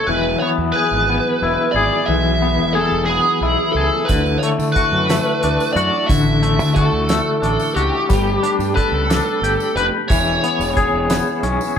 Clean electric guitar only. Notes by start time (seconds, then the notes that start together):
Already playing: E4
0.09 E3
0.42 B3
0.76 G#4
1.09 B3
1.43 E4
1.76 G#4
2.09 E3
2.42 B3
2.75 G#4
3.10 B3
3.43 E4
3.77 G#4
4.10 D3
4.43 A3
4.76 F#4
5.10 A3
5.44 D4
5.76 F#4
6.10 D3
6.43 A3
6.77 F#4
7.10 A3
7.42 D4
7.76 F#4
8.09 G3
8.43 D4
8.76 B4
9.10 D4
9.44 G4
9.77 B4
10.10 E3
10.44 B3
10.77 G#4
11.10 B3
11.43 C#4